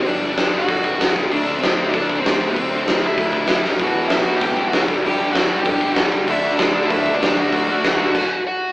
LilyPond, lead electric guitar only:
\new Staff \with { instrumentName = "Lead electric guitar" } { \time 4/4 \key d \mixolydian \tempo 4 = 193 <d' d''>8. <d' d''>8. <fis' fis''>2 r8 | <d' d''>8. <c' c''>4 <d' d''>16 <d' d''>8. <c' c''>16 <c' c''>8. <b b'>16 | <c' c''>8. <c' c''>8. <e' e''>2 r8 | <fis' fis''>8. <e' e''>8 <fis' fis''>8 <g' g''>16 <g' g''>8. <fis' fis''>8 r8. |
<g' g''>8. <fis' fis''>4 <g' g''>16 <g' g''>8. <fis' fis''>8 r8. | <e' e''>8. <d' d''>4 <e' e''>16 <e' e''>8. <d' d''>16 <d' d''>8 <fis' fis''>8~ | <fis' fis''>2. <fis' fis''>4 | }